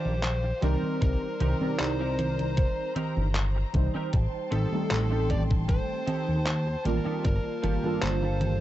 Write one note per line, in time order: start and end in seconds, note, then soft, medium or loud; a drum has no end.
0.00 0.14 D4 loud
0.00 0.14 D#4 medium
0.00 0.15 F4 loud
0.00 0.15 G4 loud
0.00 0.60 G4 medium
0.00 0.63 C5 loud
0.00 0.60 F5 medium
0.00 0.60 D6 medium
0.05 0.53 A#1 medium
0.05 high conga soft
0.23 clap loud
0.23 closed hi-hat medium
0.23 high conga soft
0.44 muted clean electric guitar stroke soft
0.62 0.77 C2 loud
0.62 1.56 G3 medium
0.62 1.56 C4 medium
0.62 1.26 C4 loud
0.62 1.26 D#4 medium
0.62 1.57 D#4 medium
0.62 1.26 G4 medium
0.62 1.01 A#4 medium
0.62 1.27 A#4 loud
0.62 4.10 C5 medium
0.62 1.57 C5 medium
0.62 1.56 D5 medium
0.62 4.10 A#5 medium
0.62 closed hi-hat medium
0.62 high conga medium
0.83 high conga soft
1.02 1.16 C2 medium
1.02 1.79 A#4 loud
1.02 kick loud
1.02 closed hi-hat medium
1.02 high conga soft
1.40 1.54 C2 medium
1.40 1.70 C4 loud
1.40 1.70 D#4 loud
1.40 1.71 G4 loud
1.40 1.71 A#4 loud
1.40 closed hi-hat medium
1.40 high conga medium
1.60 1.76 C2 soft
1.60 2.92 G3 medium
1.60 2.92 C4 medium
1.60 2.93 D#4 medium
1.60 2.93 A#4 loud
1.60 2.92 D5 medium
1.60 high conga soft
1.79 2.67 C2 medium
1.79 2.93 C5 medium
1.79 clap loud
1.79 closed hi-hat medium
1.79 high conga soft
2.00 2.29 C4 medium
2.00 2.29 D#4 medium
2.00 2.29 G4 medium
2.00 2.30 A#4 loud
2.19 closed hi-hat medium
2.19 high conga medium
2.39 closed hi-hat soft
2.39 high conga soft
2.57 muted clean electric guitar stroke soft
2.57 kick loud
2.57 closed hi-hat medium
2.96 3.26 C4 loud
2.96 3.26 D#4 loud
2.96 3.27 G4 medium
2.96 3.27 A#4 loud
2.96 closed hi-hat medium
2.96 high conga medium
3.17 3.65 G1 medium
3.17 high conga soft
3.35 clap loud
3.35 closed hi-hat medium
3.35 high conga soft
3.56 muted clean electric guitar stroke soft
3.73 3.88 C2 loud
3.73 4.67 G3 medium
3.73 4.68 C4 medium
3.73 4.69 D#4 medium
3.73 4.69 C5 medium
3.73 kick loud
3.73 closed hi-hat medium
3.73 high conga medium
3.95 4.13 C4 loud
3.95 4.14 D#4 medium
3.95 4.14 G4 medium
3.95 4.14 A#4 loud
3.95 high conga soft
4.13 4.27 A1 medium
4.13 7.22 G5 medium
4.13 8.60 A5 medium
4.13 7.22 C6 medium
4.13 kick loud
4.13 closed hi-hat medium
4.13 high conga soft
4.51 4.66 A1 medium
4.51 4.82 C4 loud
4.51 4.82 D#4 medium
4.51 4.82 G4 loud
4.51 5.33 A4 loud
4.51 4.82 A4 loud
4.51 closed hi-hat medium
4.51 high conga medium
4.72 6.03 G3 medium
4.72 6.04 A3 medium
4.72 6.04 C4 medium
4.72 6.04 D#4 medium
4.72 6.05 A4 medium
4.72 high conga soft
4.91 5.79 A1 medium
4.91 clap loud
4.91 closed hi-hat medium
4.91 high conga soft
5.11 5.40 C4 medium
5.11 5.40 D#4 medium
5.11 5.41 G4 medium
5.11 5.41 A4 loud
5.30 5.41 D5 loud
5.30 kick medium
5.30 closed hi-hat medium
5.30 high conga medium
5.51 kick loud
5.51 closed hi-hat soft
5.51 high conga soft
5.68 6.86 C5 loud
5.68 muted clean electric guitar stroke soft
5.68 kick loud
5.68 closed hi-hat medium
6.07 6.37 C4 loud
6.07 6.38 D#4 loud
6.07 6.38 G4 loud
6.07 6.38 A4 loud
6.07 closed hi-hat medium
6.07 high conga medium
6.28 6.76 D#2 medium
6.28 high conga soft
6.46 clap loud
6.46 closed hi-hat medium
6.46 high conga soft
6.67 muted clean electric guitar stroke soft
6.84 7.00 A1 loud
6.84 7.79 G3 medium
6.84 7.79 A#3 medium
6.84 7.80 F4 medium
6.84 7.22 A#4 medium
6.84 7.80 D5 medium
6.84 closed hi-hat medium
6.84 high conga medium
7.05 7.24 C4 loud
7.05 7.25 D#4 medium
7.05 7.25 G4 medium
7.05 7.25 A4 medium
7.05 high conga soft
7.25 7.39 G1 loud
7.25 8.03 A#4 loud
7.25 8.60 F5 medium
7.25 kick loud
7.25 closed hi-hat medium
7.25 high conga soft
7.63 7.77 G1 medium
7.63 7.93 A#3 loud
7.63 7.93 F4 loud
7.63 7.94 G4 loud
7.63 7.94 A4 loud
7.63 closed hi-hat medium
7.63 high conga medium
7.83 7.99 G1 soft
7.83 8.60 G3 medium
7.83 8.60 A#3 medium
7.83 8.60 D4 medium
7.83 8.60 F4 medium
7.83 8.60 A4 loud
7.83 high conga soft
8.02 8.60 G1 medium
8.02 8.60 C5 medium
8.02 clap loud
8.02 closed hi-hat medium
8.02 high conga soft
8.23 8.52 A#3 medium
8.23 8.52 F4 medium
8.23 8.52 G4 medium
8.23 8.53 A4 loud
8.41 closed hi-hat medium
8.41 high conga medium